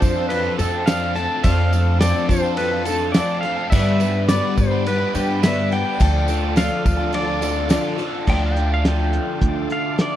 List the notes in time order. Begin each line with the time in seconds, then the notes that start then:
Already playing: F3 C4 D4 A4 C5 F5 A5 D6
0.01 F2 C5, muted overdriven electric guitar stroke, kick, ride, tambourine
0.16 C4 F4 A4
0.29 F3 C4 D4 B4, ride, tambourine
0.33 A4
0.44 C4 F4 A4
0.58 F2 A3 C4 D4 F4 A4, ride, tambourine
0.86 F3 A3 C4 D4 F4 A4 F5, snare, ride, tambourine
1.14 A3 C4 D4 F4 A4 A5, ride, tambourine
1.28 C4 F4 A4
1.43 F2 F3 A3 C4 D4 F4 A4 F5, kick, ride, tambourine
1.71 A3 C4 D4 F4 A4, ride, tambourine
1.99 F3 A3 C4 D4 F4 A4 D5, snare, ride, tambourine
2.14 C4 F4 A4
2.29 F2 C5, muted overdriven electric guitar stroke, kick, ride, tambourine
2.42 C4 F4 A4
2.57 F3 C4 D4 A4 B4, ride, tambourine
2.71 C4 F4 A4
2.84 A3 C4 F4 A4, ride, tambourine
2.89 C4 D4
3.12 F3 A3 C4 D5, snare, ride, tambourine
3.16 D4 F4 A4
3.41 A3 C4 F4 F5, ride, tambourine
3.45 D4 A4
3.56 C4 F4 A4
3.70 G2 D3 G3 B3 D4 B4 D5 E5 G5 D6, kick, tambourine, crash
3.74 B4
3.99 G3 B3 D4 B4, ride, tambourine
4.27 G2 D3 G3 B3 D4 B4 D5, snare, ride, tambourine
4.42 B3 D4 B4
4.57 G2 C5, muted overdriven electric guitar stroke, kick, ride, tambourine
4.71 B3 D4 B4
4.86 G3 B3 D4 B4, ride, tambourine
4.99 B3 D4 B4
5.13 G2 G3 B3 D4 G4 B4, ride, tambourine
5.42 G2 D3 G3 B3 D4 B4 E5, snare, ride, tambourine
5.70 G3 B3 D4 B4 G5, ride, tambourine
5.74 G3
5.84 B3 D4 B4
5.98 D2 D3 F3 D4 F4 A4 F5 D6, kick, ride, tambourine
6.27 D3 D4 F4 A4, ride, tambourine
6.55 D3 F3 D4 F4 A4 F5, snare, ride, tambourine
6.70 D4 F4 A4
6.84 D2, muted overdriven electric guitar stroke, kick, ride, tambourine
6.97 D4 F4 A4
7.13 F3 D4 F4 A4 D5, ride
7.26 D4 F4 A4
7.40 D3 D4 F4 A4, ride, tambourine
7.68 D3 F3 D4 F4 A4, snare, ride, tambourine
7.96 D3 D4 F4 A4, ride, tambourine
8.12 D4 F4 A4
8.26 D2 D3 F3 A3 D4 F4 A4 D5 F5 G5 D6, kick, crash
8.46 G5
8.56 D4 F4 A4, closed hi-hat
8.74 F5
8.85 F3 D4 F4 A4 G5, snare, closed hi-hat
9.13 closed hi-hat
9.41 D2, kick, closed hi-hat
9.70 D4 F4 A4 F5, closed hi-hat
9.98 F3 D4 F4 A4 D5, snare, closed hi-hat